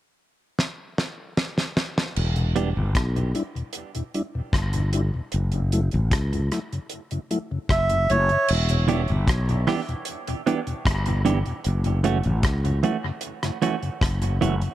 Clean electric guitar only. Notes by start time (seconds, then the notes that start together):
2.56 G3 B3 D4 G4
8.88 E3 B3 D4 G4
9.67 E3 B3 D4 G4
10.47 E3 B3 D4 G4
11.25 E3 B3 D4 G4
12.04 E3 A3 C#4 F#4
12.83 E3 A3 C#4 F#4
13.62 E3 A3 C#4 F#4
14.41 E3 A3 C#4 F#4